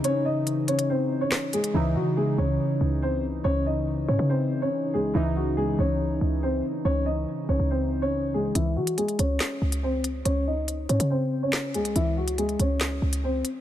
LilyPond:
<<
  \new Staff \with { instrumentName = "Upright piano" } { \time 4/4 \key cis \minor \tempo 4 = 141 <cis' cis''>8 <dis' dis''>4 <cis' cis''>8 <bis bis'>8. <cis' cis''>8. <gis gis'>8 | <e e'>8 <fis fis'>8 <gis gis'>8 <cis' cis''>4. <bis bis'>8 r8 | <cis' cis''>8 <dis' dis''>4 <cis' cis''>8 <bis bis'>8. <cis' cis''>8. <gis gis'>8 | <e e'>8 <fis fis'>8 <gis gis'>8 <cis' cis''>4. <bis bis'>8 r8 |
<cis' cis''>8 <dis' dis''>4 <cis' cis''>8 <bis bis'>8. <cis' cis''>8. <gis gis'>8 | <e e'>8 <fis fis'>8 <gis gis'>8 <cis' cis''>4. <bis bis'>8 r8 | <cis' cis''>8 <dis' dis''>4 <cis' cis''>8 <bis bis'>8. <cis' cis''>8. <gis gis'>8 | <e e'>8 <fis fis'>8 <gis gis'>8 <cis' cis''>4. <bis bis'>8 r8 | }
  \new Staff \with { instrumentName = "Brass ensemble" } { \clef bass \time 4/4 \key cis \minor << { <cis dis'>1 | <cis dis'>1~ | <cis dis'>1~ | <cis dis'>1~ |
<cis dis'>1 | r1 | r1 | r1 | } \\ { e1 | e1~ | e1 | e1~ |
e1 | r1 | r1 | r1 | } >> }
  \new Staff \with { instrumentName = "Synth keys" } { \clef bass \time 4/4 \key cis \minor <cis e dis'>1 | <cis e dis'>1~ | <cis e dis'>1 | <cis e dis'>1~ |
<cis e dis'>1 | r1 | r1 | r1 | }
  \new Staff \with { instrumentName = "808-style bass" } { \clef bass \time 4/4 \key cis \minor r1 | cis,8 e8 r8 cis,8 r8 cis,4. | cis,4. gis,16 cis4.~ cis16 bis,,8 | cis,4. cis,4 cis,4 r8 |
cis,4 r8 bis,,16 cis,2~ cis,16 | cis,8 e8 r8 cis,8 r8 cis,4. | cis,4. gis,16 cis4.~ cis16 bis,,8 | cis,4. cis,4 cis,4 r8 | }
  \new DrumStaff \with { instrumentName = "Drums" } \drummode { \time 4/4 hh4 hh8 hh16 hh16 r4 <hc ss sn>8 hh16 hh16 | r4 r4 r4 r4 | r4 r4 r4 r4 | r4 r4 r4 r4 |
r4 r4 r4 r4 | hh8. hh16 hh16 hh16 hh8 <hc hh sn>8. hh16 r8 hh8 | hh4 hh8 hh16 hh16 r4 <hc sn>8 hh16 hh16 | hh8. hh16 hh16 hh16 hh8 <hc hh sn>8. hh16 r8 hh8 | }
>>